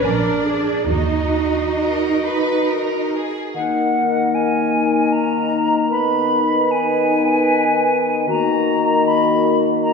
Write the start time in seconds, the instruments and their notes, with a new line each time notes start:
0.02 double bass section A#1, cello section D4, viola section A#4, violin section A#4 D5 G#5
0.45 viola section G#4
0.89 double bass section D#2, cello section D#4, viola section F#4, violin section D#5
1.81 violin section A#4
2.26 violin section B4
2.68 violin section A#4
3.15 violin section G#4
3.55 bassoon D#3, french horn section A#3 D#4, clarinet A#4, flute F#5
4.35 flute G#5
5.12 flute A#5
5.91 french horn section B3, clarinet B4, flute B5
6.71 flute G#5
8.28 bassoon D#3, french horn section A#3 F#4, clarinet F#4, flute A#5
9.07 flute B5
9.83 flute A#5